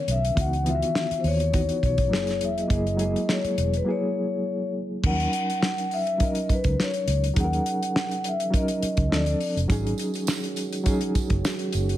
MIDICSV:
0, 0, Header, 1, 7, 480
1, 0, Start_track
1, 0, Tempo, 583090
1, 302, Time_signature, 4, 2, 24, 8
1, 9858, End_track
2, 0, Start_track
2, 0, Title_t, "Vibraphone"
2, 0, Program_c, 0, 11
2, 0, Note_on_c, 0, 73, 87
2, 93, Note_off_c, 0, 73, 0
2, 93, Note_on_c, 0, 76, 80
2, 324, Note_off_c, 0, 76, 0
2, 335, Note_on_c, 0, 78, 90
2, 565, Note_off_c, 0, 78, 0
2, 569, Note_on_c, 0, 76, 87
2, 986, Note_on_c, 0, 72, 61
2, 995, Note_off_c, 0, 76, 0
2, 1030, Note_off_c, 0, 72, 0
2, 1049, Note_on_c, 0, 73, 84
2, 1521, Note_off_c, 0, 73, 0
2, 1530, Note_on_c, 0, 73, 92
2, 2010, Note_off_c, 0, 73, 0
2, 2014, Note_on_c, 0, 76, 77
2, 2131, Note_off_c, 0, 76, 0
2, 2143, Note_on_c, 0, 75, 76
2, 2241, Note_off_c, 0, 75, 0
2, 2253, Note_on_c, 0, 75, 81
2, 2732, Note_off_c, 0, 75, 0
2, 2735, Note_on_c, 0, 73, 81
2, 3064, Note_off_c, 0, 73, 0
2, 3103, Note_on_c, 0, 71, 72
2, 3145, Note_off_c, 0, 71, 0
2, 3215, Note_on_c, 0, 73, 67
2, 3886, Note_off_c, 0, 73, 0
2, 4169, Note_on_c, 0, 78, 105
2, 4888, Note_on_c, 0, 76, 88
2, 4897, Note_off_c, 0, 78, 0
2, 5122, Note_off_c, 0, 76, 0
2, 5135, Note_on_c, 0, 75, 85
2, 5365, Note_off_c, 0, 75, 0
2, 5378, Note_on_c, 0, 71, 84
2, 5607, Note_off_c, 0, 71, 0
2, 5622, Note_on_c, 0, 73, 83
2, 5947, Note_off_c, 0, 73, 0
2, 6092, Note_on_c, 0, 78, 94
2, 6817, Note_off_c, 0, 78, 0
2, 6820, Note_on_c, 0, 76, 81
2, 6919, Note_off_c, 0, 76, 0
2, 7048, Note_on_c, 0, 75, 78
2, 7528, Note_off_c, 0, 75, 0
2, 7530, Note_on_c, 0, 74, 77
2, 7860, Note_off_c, 0, 74, 0
2, 9858, End_track
3, 0, Start_track
3, 0, Title_t, "Reed electric piano"
3, 0, Program_c, 1, 4
3, 0, Control_c, 1, 64, 127
3, 0, Note_on_c, 1, 49, 49
3, 0, Note_on_c, 1, 51, 62
3, 0, Note_on_c, 1, 59, 58
3, 0, Note_on_c, 1, 61, 55
3, 0, Note_on_c, 1, 70, 68
3, 105, Note_off_c, 1, 59, 0
3, 111, Note_off_c, 1, 61, 0
3, 115, Note_off_c, 1, 70, 0
3, 127, Note_off_c, 1, 51, 0
3, 288, Note_on_c, 1, 52, 69
3, 298, Note_on_c, 1, 59, 60
3, 307, Note_on_c, 1, 63, 57
3, 311, Control_c, 1, 64, 0
3, 315, Note_off_c, 1, 49, 0
3, 319, Note_on_c, 1, 66, 68
3, 466, Control_c, 1, 64, 127
3, 489, Note_off_c, 1, 52, 0
3, 494, Note_off_c, 1, 59, 0
3, 499, Note_off_c, 1, 63, 0
3, 505, Note_off_c, 1, 66, 0
3, 527, Note_on_c, 1, 52, 62
3, 540, Note_on_c, 1, 59, 59
3, 552, Note_on_c, 1, 51, 59
3, 563, Note_on_c, 1, 65, 56
3, 610, Note_off_c, 1, 65, 0
3, 617, Note_on_c, 1, 66, 68
3, 1113, Note_off_c, 1, 52, 0
3, 1120, Note_off_c, 1, 59, 0
3, 1126, Note_off_c, 1, 51, 0
3, 1158, Note_off_c, 1, 66, 0
3, 1244, Note_on_c, 1, 52, 58
3, 1252, Note_on_c, 1, 59, 58
3, 1263, Note_on_c, 1, 63, 58
3, 1276, Note_on_c, 1, 66, 71
3, 1721, Note_on_c, 1, 54, 75
3, 1733, Note_off_c, 1, 52, 0
3, 1734, Note_on_c, 1, 58, 65
3, 1737, Note_off_c, 1, 59, 0
3, 1741, Note_on_c, 1, 64, 67
3, 1743, Note_off_c, 1, 63, 0
3, 1749, Note_off_c, 1, 66, 0
3, 1751, Control_c, 1, 64, 0
3, 1752, Note_on_c, 1, 68, 77
3, 1899, Control_c, 1, 64, 127
3, 2123, Note_off_c, 1, 54, 0
3, 2130, Note_off_c, 1, 58, 0
3, 2133, Note_off_c, 1, 64, 0
3, 2139, Note_off_c, 1, 68, 0
3, 2202, Note_on_c, 1, 54, 62
3, 2209, Note_on_c, 1, 58, 58
3, 2223, Note_on_c, 1, 64, 60
3, 2229, Note_on_c, 1, 68, 73
3, 2407, Note_off_c, 1, 54, 0
3, 2410, Note_off_c, 1, 58, 0
3, 2417, Note_off_c, 1, 64, 0
3, 2420, Note_off_c, 1, 68, 0
3, 2445, Note_on_c, 1, 54, 64
3, 2456, Note_on_c, 1, 56, 46
3, 2467, Note_on_c, 1, 64, 62
3, 2481, Note_on_c, 1, 68, 71
3, 2513, Note_on_c, 1, 58, 55
3, 2517, Note_off_c, 1, 56, 0
3, 3032, Note_off_c, 1, 54, 0
3, 3043, Note_off_c, 1, 64, 0
3, 3050, Note_off_c, 1, 68, 0
3, 3066, Note_off_c, 1, 58, 0
3, 3165, Note_on_c, 1, 54, 62
3, 3174, Note_on_c, 1, 58, 53
3, 3185, Note_on_c, 1, 64, 52
3, 3198, Note_on_c, 1, 68, 63
3, 3939, Note_off_c, 1, 54, 0
3, 3944, Note_off_c, 1, 58, 0
3, 3949, Note_off_c, 1, 64, 0
3, 3955, Note_off_c, 1, 68, 0
3, 4131, Note_on_c, 1, 53, 53
3, 4143, Note_on_c, 1, 61, 61
3, 4149, Note_on_c, 1, 63, 64
3, 4154, Control_c, 1, 64, 0
3, 4166, Note_on_c, 1, 70, 72
3, 4183, Note_on_c, 1, 54, 68
3, 4195, Note_off_c, 1, 53, 0
3, 4311, Control_c, 1, 64, 127
3, 4908, Note_off_c, 1, 61, 0
3, 4910, Note_off_c, 1, 63, 0
3, 4919, Note_off_c, 1, 70, 0
3, 4928, Note_off_c, 1, 54, 0
3, 5088, Note_on_c, 1, 54, 64
3, 5100, Note_on_c, 1, 61, 57
3, 5107, Note_on_c, 1, 63, 56
3, 5124, Note_on_c, 1, 70, 73
3, 5860, Note_off_c, 1, 54, 0
3, 5866, Note_off_c, 1, 61, 0
3, 5869, Note_off_c, 1, 63, 0
3, 5878, Note_off_c, 1, 70, 0
3, 6039, Note_on_c, 1, 54, 70
3, 6052, Note_on_c, 1, 61, 62
3, 6060, Note_on_c, 1, 63, 66
3, 6072, Note_on_c, 1, 68, 59
3, 6125, Note_off_c, 1, 68, 0
3, 6127, Note_on_c, 1, 70, 73
3, 6815, Note_off_c, 1, 54, 0
3, 6822, Note_off_c, 1, 61, 0
3, 6825, Note_off_c, 1, 63, 0
3, 6859, Note_off_c, 1, 70, 0
3, 6998, Note_on_c, 1, 54, 70
3, 7010, Note_on_c, 1, 61, 62
3, 7020, Note_on_c, 1, 63, 61
3, 7031, Note_on_c, 1, 70, 76
3, 7483, Note_on_c, 1, 53, 78
3, 7489, Note_off_c, 1, 54, 0
3, 7491, Note_on_c, 1, 60, 68
3, 7495, Note_off_c, 1, 61, 0
3, 7500, Note_off_c, 1, 63, 0
3, 7504, Note_on_c, 1, 62, 70
3, 7505, Note_off_c, 1, 70, 0
3, 7513, Control_c, 1, 64, 0
3, 7518, Note_on_c, 1, 69, 83
3, 7637, Control_c, 1, 64, 127
3, 7883, Note_off_c, 1, 53, 0
3, 7887, Note_off_c, 1, 60, 0
3, 7894, Note_off_c, 1, 62, 0
3, 7900, Note_off_c, 1, 69, 0
3, 7968, Note_on_c, 1, 54, 86
3, 7975, Note_on_c, 1, 61, 80
3, 7991, Control_c, 1, 64, 0
3, 7991, Note_on_c, 1, 63, 78
3, 8000, Note_on_c, 1, 68, 96
3, 8135, Control_c, 1, 64, 127
3, 8738, Note_off_c, 1, 54, 0
3, 8741, Note_off_c, 1, 61, 0
3, 8749, Note_off_c, 1, 63, 0
3, 8754, Note_off_c, 1, 68, 0
3, 8921, Note_on_c, 1, 54, 85
3, 8933, Note_on_c, 1, 61, 77
3, 8941, Note_on_c, 1, 63, 75
3, 8957, Note_on_c, 1, 68, 88
3, 9693, Note_off_c, 1, 54, 0
3, 9699, Note_off_c, 1, 61, 0
3, 9703, Note_off_c, 1, 63, 0
3, 9711, Note_off_c, 1, 68, 0
3, 9858, End_track
4, 0, Start_track
4, 0, Title_t, "French horn section"
4, 0, Program_c, 2, 60
4, 7982, Note_on_c, 2, 66, 87
4, 7983, Note_on_c, 2, 61, 72
4, 7985, Note_on_c, 2, 54, 66
4, 7986, Note_on_c, 2, 51, 78
4, 7986, Note_on_c, 2, 56, 70
4, 9858, Note_off_c, 2, 51, 0
4, 9858, Note_off_c, 2, 54, 0
4, 9858, Note_off_c, 2, 56, 0
4, 9858, Note_off_c, 2, 61, 0
4, 9858, Note_off_c, 2, 66, 0
4, 9858, End_track
5, 0, Start_track
5, 0, Title_t, "Fingered electric bass"
5, 0, Program_c, 3, 33
5, 62, Note_on_c, 3, 35, 80
5, 244, Note_off_c, 3, 35, 0
5, 304, Note_on_c, 3, 37, 84
5, 668, Note_off_c, 3, 37, 0
5, 1019, Note_on_c, 3, 39, 77
5, 1385, Note_off_c, 3, 39, 0
5, 1507, Note_on_c, 3, 35, 73
5, 1747, Note_off_c, 3, 35, 0
5, 1747, Note_on_c, 3, 30, 83
5, 1981, Note_off_c, 3, 30, 0
5, 1981, Note_on_c, 3, 28, 82
5, 2164, Note_off_c, 3, 28, 0
5, 2225, Note_on_c, 3, 30, 92
5, 2589, Note_off_c, 3, 30, 0
5, 2943, Note_on_c, 3, 28, 74
5, 3125, Note_off_c, 3, 28, 0
5, 4148, Note_on_c, 3, 39, 84
5, 4328, Note_off_c, 3, 39, 0
5, 5472, Note_on_c, 3, 37, 77
5, 5556, Note_off_c, 3, 37, 0
5, 5822, Note_on_c, 3, 37, 86
5, 6005, Note_off_c, 3, 37, 0
5, 6065, Note_on_c, 3, 39, 100
5, 6246, Note_off_c, 3, 39, 0
5, 7390, Note_on_c, 3, 37, 83
5, 7474, Note_off_c, 3, 37, 0
5, 7501, Note_on_c, 3, 38, 95
5, 7683, Note_off_c, 3, 38, 0
5, 7873, Note_on_c, 3, 29, 88
5, 7956, Note_off_c, 3, 29, 0
5, 7984, Note_on_c, 3, 32, 96
5, 8165, Note_off_c, 3, 32, 0
5, 9304, Note_on_c, 3, 30, 78
5, 9389, Note_off_c, 3, 30, 0
5, 9666, Note_on_c, 3, 30, 90
5, 9845, Note_off_c, 3, 30, 0
5, 9858, End_track
6, 0, Start_track
6, 0, Title_t, "Muted fingered electric bass strokes"
6, 913, Note_on_c, 9, 29, 41
6, 995, Note_off_c, 9, 29, 0
6, 2832, Note_on_c, 9, 29, 43
6, 2914, Note_off_c, 9, 29, 0
6, 5349, Note_on_c, 9, 29, 39
6, 5431, Note_off_c, 9, 29, 0
6, 7265, Note_on_c, 9, 29, 43
6, 7347, Note_off_c, 9, 29, 0
6, 9183, Note_on_c, 9, 29, 46
6, 9265, Note_off_c, 9, 29, 0
6, 9858, End_track
7, 0, Start_track
7, 0, Title_t, "Drums"
7, 65, Note_on_c, 9, 42, 67
7, 148, Note_off_c, 9, 42, 0
7, 203, Note_on_c, 9, 42, 43
7, 285, Note_off_c, 9, 42, 0
7, 304, Note_on_c, 9, 36, 110
7, 306, Note_on_c, 9, 42, 93
7, 386, Note_off_c, 9, 36, 0
7, 389, Note_off_c, 9, 42, 0
7, 439, Note_on_c, 9, 42, 43
7, 521, Note_off_c, 9, 42, 0
7, 543, Note_on_c, 9, 42, 59
7, 626, Note_off_c, 9, 42, 0
7, 678, Note_on_c, 9, 42, 46
7, 761, Note_off_c, 9, 42, 0
7, 785, Note_on_c, 9, 38, 96
7, 868, Note_off_c, 9, 38, 0
7, 914, Note_on_c, 9, 42, 48
7, 996, Note_off_c, 9, 42, 0
7, 1021, Note_on_c, 9, 46, 44
7, 1104, Note_off_c, 9, 46, 0
7, 1152, Note_on_c, 9, 42, 46
7, 1234, Note_off_c, 9, 42, 0
7, 1263, Note_on_c, 9, 42, 80
7, 1266, Note_on_c, 9, 36, 83
7, 1346, Note_off_c, 9, 42, 0
7, 1348, Note_off_c, 9, 36, 0
7, 1389, Note_on_c, 9, 42, 47
7, 1472, Note_off_c, 9, 42, 0
7, 1506, Note_on_c, 9, 36, 74
7, 1508, Note_on_c, 9, 42, 56
7, 1588, Note_off_c, 9, 36, 0
7, 1591, Note_off_c, 9, 42, 0
7, 1628, Note_on_c, 9, 42, 50
7, 1630, Note_on_c, 9, 36, 85
7, 1710, Note_off_c, 9, 42, 0
7, 1713, Note_off_c, 9, 36, 0
7, 1757, Note_on_c, 9, 38, 99
7, 1839, Note_off_c, 9, 38, 0
7, 1869, Note_on_c, 9, 42, 45
7, 1883, Note_on_c, 9, 38, 34
7, 1951, Note_off_c, 9, 42, 0
7, 1966, Note_off_c, 9, 38, 0
7, 1983, Note_on_c, 9, 42, 63
7, 2065, Note_off_c, 9, 42, 0
7, 2121, Note_on_c, 9, 42, 42
7, 2203, Note_off_c, 9, 42, 0
7, 2224, Note_on_c, 9, 36, 105
7, 2225, Note_on_c, 9, 42, 91
7, 2306, Note_off_c, 9, 36, 0
7, 2307, Note_off_c, 9, 42, 0
7, 2360, Note_on_c, 9, 42, 39
7, 2442, Note_off_c, 9, 42, 0
7, 2462, Note_on_c, 9, 42, 62
7, 2545, Note_off_c, 9, 42, 0
7, 2602, Note_on_c, 9, 42, 42
7, 2685, Note_off_c, 9, 42, 0
7, 2708, Note_on_c, 9, 38, 100
7, 2790, Note_off_c, 9, 38, 0
7, 2836, Note_on_c, 9, 42, 52
7, 2918, Note_off_c, 9, 42, 0
7, 2946, Note_on_c, 9, 42, 69
7, 3029, Note_off_c, 9, 42, 0
7, 3075, Note_on_c, 9, 42, 41
7, 3158, Note_off_c, 9, 42, 0
7, 4145, Note_on_c, 9, 36, 106
7, 4147, Note_on_c, 9, 49, 89
7, 4228, Note_off_c, 9, 36, 0
7, 4230, Note_off_c, 9, 49, 0
7, 4280, Note_on_c, 9, 42, 43
7, 4362, Note_off_c, 9, 42, 0
7, 4388, Note_on_c, 9, 42, 58
7, 4470, Note_off_c, 9, 42, 0
7, 4525, Note_on_c, 9, 42, 44
7, 4607, Note_off_c, 9, 42, 0
7, 4630, Note_on_c, 9, 38, 104
7, 4713, Note_off_c, 9, 38, 0
7, 4760, Note_on_c, 9, 42, 48
7, 4843, Note_off_c, 9, 42, 0
7, 4867, Note_on_c, 9, 46, 47
7, 4949, Note_off_c, 9, 46, 0
7, 4995, Note_on_c, 9, 42, 45
7, 5078, Note_off_c, 9, 42, 0
7, 5104, Note_on_c, 9, 42, 85
7, 5106, Note_on_c, 9, 36, 85
7, 5186, Note_off_c, 9, 42, 0
7, 5189, Note_off_c, 9, 36, 0
7, 5227, Note_on_c, 9, 42, 52
7, 5310, Note_off_c, 9, 42, 0
7, 5346, Note_on_c, 9, 36, 77
7, 5347, Note_on_c, 9, 42, 59
7, 5429, Note_off_c, 9, 36, 0
7, 5429, Note_off_c, 9, 42, 0
7, 5466, Note_on_c, 9, 42, 51
7, 5471, Note_on_c, 9, 36, 87
7, 5548, Note_off_c, 9, 42, 0
7, 5553, Note_off_c, 9, 36, 0
7, 5595, Note_on_c, 9, 38, 100
7, 5678, Note_off_c, 9, 38, 0
7, 5710, Note_on_c, 9, 42, 44
7, 5793, Note_off_c, 9, 42, 0
7, 5825, Note_on_c, 9, 42, 69
7, 5907, Note_off_c, 9, 42, 0
7, 5958, Note_on_c, 9, 42, 44
7, 6040, Note_off_c, 9, 42, 0
7, 6062, Note_on_c, 9, 42, 90
7, 6063, Note_on_c, 9, 36, 108
7, 6144, Note_off_c, 9, 42, 0
7, 6145, Note_off_c, 9, 36, 0
7, 6200, Note_on_c, 9, 42, 42
7, 6283, Note_off_c, 9, 42, 0
7, 6306, Note_on_c, 9, 42, 61
7, 6388, Note_off_c, 9, 42, 0
7, 6442, Note_on_c, 9, 42, 49
7, 6524, Note_off_c, 9, 42, 0
7, 6553, Note_on_c, 9, 38, 107
7, 6635, Note_off_c, 9, 38, 0
7, 6679, Note_on_c, 9, 42, 51
7, 6761, Note_off_c, 9, 42, 0
7, 6785, Note_on_c, 9, 42, 72
7, 6868, Note_off_c, 9, 42, 0
7, 6915, Note_on_c, 9, 42, 46
7, 6997, Note_off_c, 9, 42, 0
7, 7027, Note_on_c, 9, 36, 85
7, 7029, Note_on_c, 9, 42, 88
7, 7109, Note_off_c, 9, 36, 0
7, 7112, Note_off_c, 9, 42, 0
7, 7147, Note_on_c, 9, 42, 54
7, 7230, Note_off_c, 9, 42, 0
7, 7265, Note_on_c, 9, 42, 63
7, 7347, Note_off_c, 9, 42, 0
7, 7384, Note_on_c, 9, 42, 53
7, 7388, Note_on_c, 9, 36, 87
7, 7466, Note_off_c, 9, 42, 0
7, 7470, Note_off_c, 9, 36, 0
7, 7510, Note_on_c, 9, 38, 97
7, 7592, Note_off_c, 9, 38, 0
7, 7625, Note_on_c, 9, 42, 49
7, 7707, Note_off_c, 9, 42, 0
7, 7742, Note_on_c, 9, 46, 47
7, 7824, Note_off_c, 9, 46, 0
7, 7880, Note_on_c, 9, 42, 45
7, 7963, Note_off_c, 9, 42, 0
7, 7982, Note_on_c, 9, 36, 114
7, 7984, Note_on_c, 9, 54, 45
7, 7985, Note_on_c, 9, 42, 97
7, 8065, Note_off_c, 9, 36, 0
7, 8066, Note_off_c, 9, 54, 0
7, 8068, Note_off_c, 9, 42, 0
7, 8122, Note_on_c, 9, 42, 43
7, 8204, Note_off_c, 9, 42, 0
7, 8213, Note_on_c, 9, 54, 49
7, 8226, Note_on_c, 9, 42, 65
7, 8296, Note_off_c, 9, 54, 0
7, 8309, Note_off_c, 9, 42, 0
7, 8344, Note_on_c, 9, 54, 31
7, 8358, Note_on_c, 9, 42, 45
7, 8427, Note_off_c, 9, 54, 0
7, 8441, Note_off_c, 9, 42, 0
7, 8455, Note_on_c, 9, 54, 90
7, 8465, Note_on_c, 9, 38, 105
7, 8537, Note_off_c, 9, 54, 0
7, 8547, Note_off_c, 9, 38, 0
7, 8591, Note_on_c, 9, 42, 52
7, 8673, Note_off_c, 9, 42, 0
7, 8694, Note_on_c, 9, 54, 41
7, 8700, Note_on_c, 9, 42, 66
7, 8776, Note_off_c, 9, 54, 0
7, 8782, Note_off_c, 9, 42, 0
7, 8828, Note_on_c, 9, 54, 32
7, 8830, Note_on_c, 9, 42, 50
7, 8910, Note_off_c, 9, 54, 0
7, 8912, Note_off_c, 9, 42, 0
7, 8938, Note_on_c, 9, 42, 83
7, 8940, Note_on_c, 9, 54, 46
7, 8941, Note_on_c, 9, 36, 88
7, 9021, Note_off_c, 9, 42, 0
7, 9022, Note_off_c, 9, 54, 0
7, 9024, Note_off_c, 9, 36, 0
7, 9061, Note_on_c, 9, 42, 56
7, 9144, Note_off_c, 9, 42, 0
7, 9180, Note_on_c, 9, 36, 83
7, 9180, Note_on_c, 9, 42, 66
7, 9181, Note_on_c, 9, 54, 54
7, 9263, Note_off_c, 9, 36, 0
7, 9263, Note_off_c, 9, 42, 0
7, 9263, Note_off_c, 9, 54, 0
7, 9301, Note_on_c, 9, 42, 53
7, 9304, Note_on_c, 9, 36, 95
7, 9383, Note_off_c, 9, 42, 0
7, 9387, Note_off_c, 9, 36, 0
7, 9422, Note_on_c, 9, 54, 76
7, 9425, Note_on_c, 9, 38, 108
7, 9505, Note_off_c, 9, 54, 0
7, 9508, Note_off_c, 9, 38, 0
7, 9541, Note_on_c, 9, 42, 49
7, 9623, Note_off_c, 9, 42, 0
7, 9652, Note_on_c, 9, 42, 73
7, 9657, Note_on_c, 9, 54, 47
7, 9735, Note_off_c, 9, 42, 0
7, 9739, Note_off_c, 9, 54, 0
7, 9790, Note_on_c, 9, 42, 47
7, 9858, Note_off_c, 9, 42, 0
7, 9858, End_track
0, 0, End_of_file